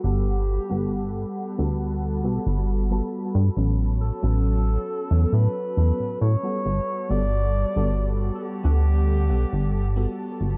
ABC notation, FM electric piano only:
X:1
M:4/4
L:1/16
Q:1/4=68
K:Glyd
V:1 name="FM electric piano"
[G,B,Af]3 [G,B,Af]4 [G,B,FA]3 [G,B,FA]3 [G,B,FA]3 | [F,B,CA]3 [F,B,CA]4 [F,B,CA]3 [F,B,CA]3 [G,B,FA]3 | [G,B,FA]3 [G,B,FA]4 [G,B,Af]3 [G,B,Af]3 [G,B,FA]3 |]